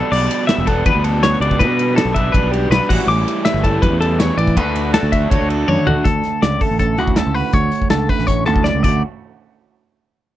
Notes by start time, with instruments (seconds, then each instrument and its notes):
Already playing: overdriven electric guitar B2 G3 B3 D4, clean electric guitar A4
0.12 fingered electric bass B1, clean electric guitar D5, crash, splash
0.31 ride
0.47 clean electric guitar E5, snare, ride
0.58 fingered electric bass E1
0.67 overdriven electric guitar B2 G3 B3 D4, clean electric guitar A4, kick, ride
0.86 fingered electric bass E2, clean electric guitar B4, kick, ride
0.95 fingered electric bass D2
1.04 clean electric guitar A4, ride
1.23 clean electric guitar C#5, snare, ride
1.33 snare
1.40 fingered electric bass C#2, overdriven electric guitar B2 G3 B3 D4, clean electric guitar D5, ride
1.51 kick
1.59 fingered electric bass B2, clean electric guitar B4, kick, ride
1.79 ride
1.96 clean electric guitar A4, snare, ride
2.05 fingered electric bass B1, snare
2.14 overdriven electric guitar B2 G3 B3 D4, clean electric guitar E5, kick, ride
2.32 fingered electric bass B1, clean electric guitar B4, kick, ride
2.43 fingered electric bass B1
2.52 clean electric guitar G4, ride
2.70 fingered electric bass B1, clean electric guitar B4, snare, ride
2.82 snare
2.89 fingered electric bass A1, overdriven electric guitar A2 E3 G3 C#4 E4, clean electric guitar F#4, kick, crash
3.07 fingered electric bass A1, clean electric guitar D6
3.28 ride
3.45 clean electric guitar E5, snare, ride
3.54 fingered electric bass G1, snare
3.64 overdriven electric guitar A2 E3 G3 C#4 E4, clean electric guitar A4, kick, ride
3.82 fingered electric bass F#2, clean electric guitar B4, kick, ride
3.91 fingered electric bass E2
4.01 clean electric guitar A4, ride
4.19 clean electric guitar C#5, snare, ride
4.37 fingered electric bass A1, clean electric guitar D5, ride
4.47 kick
4.57 fingered electric bass D2, overdriven electric guitar D3 A3 D4 F#4, clean electric guitar B4, kick, ride
4.76 ride
4.94 clean electric guitar A4, snare, ride
5.03 fingered electric bass D2, snare
5.12 clean electric guitar E5, kick, ride
5.30 fingered electric bass D2, overdriven electric guitar D3 A3 D4 F#4, clean electric guitar C#5, kick, ride
5.41 fingered electric bass D2
5.49 clean electric guitar A4, ride
5.68 fingered electric bass F#2, clean electric guitar C#5, high tom
5.87 fingered electric bass D3, clean electric guitar F#4, floor tom
6.04 clean electric guitar D2 A4, fingered electric bass D2, kick, closed hi-hat
6.23 snare, closed hi-hat
6.42 fingered electric bass C#2, clean electric guitar D3 C#4 D5, snare, closed hi-hat
6.61 clean electric guitar A3 A4, kick, open hi-hat
6.71 fingered electric bass A1
6.79 clean electric guitar C#4 A4, kick, closed hi-hat
6.98 fingered electric bass D2, clean electric guitar A2 A3 F#4, closed hi-hat
7.07 kick
7.16 clean electric guitar C#4 A4, snare, closed hi-hat
7.27 fingered electric bass C#2
7.35 clean electric guitar F#4 B4, open hi-hat
7.53 fingered electric bass D2, clean electric guitar D2 C#5, kick, closed hi-hat
7.72 closed hi-hat
7.82 kick
7.90 fingered electric bass C#2, clean electric guitar D3 C#4 A4, snare, closed hi-hat
8.09 clean electric guitar A3 B4, kick, open hi-hat
8.19 fingered electric bass A1, snare
8.27 clean electric guitar C#4 C#5, kick, closed hi-hat
8.46 fingered electric bass D2, clean electric guitar A2 A3 A4, closed hi-hat
8.56 kick
8.64 clean electric guitar C#4 D5, snare
8.75 fingered electric bass C#2
8.83 clean electric guitar D2 D3 A3 C#4 D5, fingered electric bass D2, kick, crash
8.87 clean electric guitar F#4